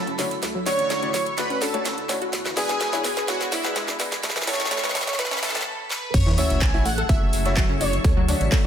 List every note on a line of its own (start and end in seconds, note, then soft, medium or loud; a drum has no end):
0.00 0.41 F#3 medium
0.00 2.29 E4 medium
0.00 0.41 F#4 medium
0.00 0.19 A4 medium
0.00 0.41 A4 medium
0.00 0.16 A5 medium
0.00 5.66 B5 medium
0.07 0.37 F#1 medium
0.07 0.18 C#4 medium
0.07 closed hi-hat soft
0.19 0.26 D3 medium
0.19 0.26 A3 medium
0.19 0.26 C#4 medium
0.19 0.26 E4 medium
0.19 0.26 F#4 medium
0.19 0.26 C#5 medium
0.19 snare medium
0.19 closed hi-hat medium
0.19 open hi-hat medium
0.31 closed hi-hat soft
0.43 0.72 D2 medium
0.43 2.31 D3 medium
0.43 0.51 A3 medium
0.43 2.31 A3 medium
0.43 4.20 F#4 medium
0.43 snare medium
0.43 closed hi-hat medium
0.55 0.62 F#3 loud
0.66 1.00 D3 loud
0.66 1.00 A3 medium
0.66 1.00 C#4 medium
0.66 0.74 D4 medium
0.66 1.00 D4 medium
0.66 1.00 F#4 medium
0.66 1.00 C#5 loud
0.66 1.39 C#5 loud
0.66 1.34 C#6 loud
0.66 snare medium
0.66 closed hi-hat medium
0.66 open hi-hat loud
0.79 0.86 A1 loud
0.79 closed hi-hat soft
0.79 closed hi-hat medium
0.90 0.98 A3 loud
0.90 snare medium
0.90 snare loud
0.90 closed hi-hat medium
1.03 1.32 A1 medium
1.03 1.09 D3 medium
1.03 1.09 A3 medium
1.03 1.09 C#4 medium
1.03 1.09 D4 medium
1.03 1.09 F#4 medium
1.03 1.09 D5 loud
1.03 closed hi-hat soft
1.14 1.26 F#3 medium
1.14 snare medium
1.14 closed hi-hat medium
1.14 open hi-hat medium
1.26 closed hi-hat soft
1.38 1.54 D2 medium
1.38 1.71 D3 medium
1.38 1.71 A3 medium
1.38 1.46 A3 medium
1.38 1.71 D4 medium
1.38 1.71 F#4 medium
1.38 1.63 B4 loud
1.38 1.71 C#5 medium
1.38 1.71 D5 medium
1.38 1.60 B5 loud
1.38 snare medium
1.38 closed hi-hat medium
1.38 open hi-hat medium
1.50 1.58 C#4 loud
1.50 closed hi-hat soft
1.62 1.91 D2 medium
1.62 1.70 D4 medium
1.62 2.09 A4 medium
1.62 2.06 A5 medium
1.62 snare medium
1.62 closed hi-hat medium
1.62 open hi-hat loud
1.74 1.81 D3 loud
1.74 1.81 A3 medium
1.74 1.85 A3 medium
1.74 1.81 C#4 medium
1.74 1.81 D4 medium
1.74 1.81 F#4 medium
1.74 1.81 C#5 loud
1.74 closed hi-hat medium
1.85 1.94 C#4 medium
1.85 snare medium
1.85 snare loud
1.85 closed hi-hat medium
1.98 2.27 D2 loud
1.98 closed hi-hat soft
2.09 2.17 A3 medium
2.09 2.17 C#4 medium
2.09 2.17 D4 medium
2.09 2.17 F#4 medium
2.09 2.17 C#5 medium
2.09 2.21 C#5 loud
2.09 snare soft
2.09 snare medium
2.09 closed hi-hat medium
2.09 open hi-hat medium
2.22 2.29 F#4 loud
2.22 closed hi-hat medium
2.33 2.63 E2 loud
2.33 5.63 E3 medium
2.33 4.22 B3 medium
2.33 4.22 D4 medium
2.33 4.22 G#4 medium
2.33 snare medium
2.33 closed hi-hat medium
2.45 2.50 E3 medium
2.45 snare medium
2.57 2.90 G#3 loud
2.57 2.90 B3 medium
2.57 2.90 D4 medium
2.57 2.65 D4 medium
2.57 2.90 E4 medium
2.57 3.30 G#4 loud
2.57 2.90 B4 loud
2.57 3.24 G#5 loud
2.57 snare medium
2.57 closed hi-hat medium
2.57 open hi-hat loud
2.69 2.85 E2 loud
2.69 snare medium
2.69 closed hi-hat soft
2.69 closed hi-hat medium
2.81 snare medium
2.81 snare loud
2.81 closed hi-hat medium
2.93 3.22 G#2 medium
2.93 3.00 G#3 medium
2.93 3.00 B3 medium
2.93 3.00 D4 medium
2.93 3.00 E4 loud
2.93 3.00 E4 medium
2.93 3.00 C#5 loud
2.93 snare medium
2.93 closed hi-hat soft
3.04 3.09 B3 medium
3.04 snare loud
3.04 closed hi-hat medium
3.04 open hi-hat medium
3.17 3.24 B4 loud
3.17 snare medium
3.17 closed hi-hat medium
3.28 3.45 E2 medium
3.28 3.62 G#3 medium
3.28 3.62 B3 medium
3.28 3.62 D4 medium
3.28 3.62 E4 medium
3.28 3.54 F#4 loud
3.28 3.62 C#5 medium
3.28 3.51 F#5 loud
3.28 snare medium
3.28 closed hi-hat medium
3.41 snare medium
3.41 closed hi-hat soft
3.52 3.82 E2 medium
3.52 4.00 E4 medium
3.52 3.96 E5 medium
3.52 snare loud
3.52 closed hi-hat medium
3.52 open hi-hat loud
3.65 3.71 G#3 loud
3.65 3.71 B3 medium
3.65 3.71 D4 medium
3.65 3.71 E4 medium
3.65 3.71 B4 loud
3.65 snare medium
3.65 snare soft
3.65 closed hi-hat medium
3.76 3.84 G#3 loud
3.76 snare loud
3.76 closed hi-hat medium
3.88 4.18 E2 medium
3.88 3.99 D4 medium
3.88 snare medium
3.88 closed hi-hat soft
4.00 4.07 G#3 medium
4.00 4.07 B3 medium
4.00 4.07 D4 medium
4.00 4.07 E4 medium
4.00 4.07 B4 medium
4.00 snare loud
4.00 closed hi-hat medium
4.00 open hi-hat medium
4.12 snare medium
4.12 closed hi-hat soft
4.12 closed hi-hat medium
4.23 4.53 A1 medium
4.23 5.65 A3 medium
4.23 4.32 A3 medium
4.23 5.65 C#4 medium
4.23 snare loud
4.23 closed hi-hat medium
4.30 snare medium
4.36 4.43 E3 loud
4.36 snare medium
4.42 snare medium
4.47 4.81 A2 loud
4.47 4.81 C#4 medium
4.47 4.55 E4 medium
4.47 4.81 E4 medium
4.47 4.81 A4 loud
4.47 5.20 C#5 loud
4.47 5.15 C#6 loud
4.47 snare loud
4.47 closed hi-hat medium
4.47 open hi-hat loud
4.54 snare medium
4.60 4.67 E1 loud
4.60 snare medium
4.60 closed hi-hat medium
4.65 snare medium
4.71 4.79 A3 loud
4.71 snare loud
4.71 closed hi-hat medium
4.77 snare medium
4.83 5.13 E1 loud
4.83 4.90 A2 loud
4.83 4.90 C#4 medium
4.83 4.90 E4 medium
4.83 4.90 B4 loud
4.83 snare soft
4.83 snare loud
4.83 closed hi-hat soft
4.89 snare medium
4.95 5.07 E3 medium
4.95 snare loud
4.95 closed hi-hat medium
4.95 open hi-hat medium
5.01 snare loud
5.07 snare medium
5.07 closed hi-hat medium
5.13 snare medium
5.19 5.35 A1 medium
5.19 5.40 A2 medium
5.19 5.27 A3 medium
5.19 5.40 C#4 medium
5.19 5.40 E4 medium
5.19 5.40 B4 medium
5.19 5.44 B4 loud
5.19 5.41 B5 loud
5.19 snare loud
5.19 closed hi-hat medium
5.25 snare medium
5.31 5.39 C#4 loud
5.31 snare loud
5.31 snare medium
5.31 closed hi-hat medium
5.31 closed hi-hat soft
5.37 snare loud
5.42 5.51 A1 medium
5.42 5.50 A2 medium
5.42 5.50 C#4 medium
5.42 5.50 E4 medium
5.42 5.51 E4 medium
5.42 5.90 A4 medium
5.42 5.50 B4 loud
5.42 5.65 A5 medium
5.42 snare loud
5.42 closed hi-hat medium
5.42 open hi-hat loud
5.49 snare medium
5.54 5.62 A2 medium
5.54 5.66 A3 medium
5.54 5.62 C#4 medium
5.54 5.62 E4 medium
5.54 5.62 A4 loud
5.54 snare loud
5.54 closed hi-hat medium
5.61 snare medium
5.90 6.15 B4 medium
5.90 snare medium
6.14 6.44 F#1 loud
6.14 8.03 F#3 medium
6.14 8.03 E4 medium
6.14 8.03 G#4 medium
6.14 8.03 A4 medium
6.14 6.39 C#5 loud
6.14 8.67 E5 medium
6.14 6.36 C#6 loud
6.14 8.67 C#7 medium
6.14 kick loud
6.14 closed hi-hat medium
6.14 crash loud
6.14 sub drop medium
6.26 6.31 E3 medium
6.26 6.31 E4 medium
6.26 snare medium
6.37 6.71 A3 loud
6.37 6.71 C#4 medium
6.37 6.46 C#4 medium
6.37 6.71 E4 medium
6.37 6.71 F#4 medium
6.37 6.71 C#5 loud
6.37 6.46 C#5 medium
6.37 6.63 E5 loud
6.37 6.60 E6 loud
6.37 closed hi-hat medium
6.37 open hi-hat loud
6.50 6.66 F#1 loud
6.50 closed hi-hat medium
6.50 closed hi-hat soft
6.61 6.87 G#5 loud
6.61 6.84 G#6 loud
6.61 kick loud
6.61 snare loud
6.61 clap loud
6.61 closed hi-hat medium
6.74 7.03 A1 medium
6.74 6.81 A3 medium
6.74 6.81 C#4 medium
6.74 6.81 E4 medium
6.74 6.82 E4 loud
6.74 6.81 F#4 medium
6.74 6.81 E5 loud
6.74 6.81 E5 medium
6.74 closed hi-hat soft
6.85 6.90 A3 medium
6.85 6.90 A4 medium
6.85 7.11 F#5 loud
6.85 7.08 F#6 loud
6.85 closed hi-hat medium
6.85 open hi-hat medium
6.98 7.05 A4 loud
6.98 7.05 A5 medium
6.98 closed hi-hat medium
7.09 7.26 F#1 medium
7.09 7.43 A3 medium
7.09 7.43 C#4 medium
7.09 7.43 E4 medium
7.09 7.43 F#4 medium
7.09 7.82 E5 loud
7.09 7.43 E5 medium
7.09 7.77 E6 loud
7.09 kick loud
7.09 closed hi-hat medium
7.33 7.63 F#1 medium
7.33 closed hi-hat medium
7.33 open hi-hat loud
7.45 7.52 A3 loud
7.45 7.52 C#4 medium
7.45 7.52 E4 medium
7.45 7.52 F#4 medium
7.45 7.52 C#5 loud
7.45 snare soft
7.45 closed hi-hat medium
7.57 7.65 F#3 loud
7.57 7.65 F#4 medium
7.57 kick loud
7.57 snare loud
7.57 clap loud
7.57 closed hi-hat loud
7.57 closed hi-hat medium
7.69 7.99 F#1 medium
7.69 7.80 C#4 medium
7.69 7.80 C#5 medium
7.81 7.88 D3 medium
7.81 7.88 A3 medium
7.81 7.88 C#4 medium
7.81 7.88 E4 medium
7.81 7.88 F#4 medium
7.81 7.88 C#5 medium
7.81 8.28 C#5 medium
7.81 8.25 C#6 medium
7.81 closed hi-hat medium
7.81 open hi-hat medium
7.93 closed hi-hat soft
7.93 closed hi-hat medium
8.04 8.34 D2 medium
8.04 8.67 D3 medium
8.04 8.67 A3 medium
8.04 8.13 A3 medium
8.04 8.67 E4 medium
8.04 8.67 F#4 medium
8.04 8.13 A4 medium
8.04 kick loud
8.04 closed hi-hat medium
8.17 8.24 F#3 loud
8.17 8.24 F#4 medium
8.28 8.62 D3 loud
8.28 8.62 A3 medium
8.28 8.62 C#4 medium
8.28 8.62 D4 medium
8.28 8.36 D4 medium
8.28 8.62 F#4 medium
8.28 8.62 C#5 loud
8.28 8.36 D5 medium
8.28 closed hi-hat medium
8.28 open hi-hat loud
8.40 8.48 A1 loud
8.40 closed hi-hat soft
8.40 closed hi-hat medium
8.52 8.60 A3 loud
8.52 8.60 A4 medium
8.52 kick loud
8.52 snare loud
8.52 clap loud
8.52 closed hi-hat medium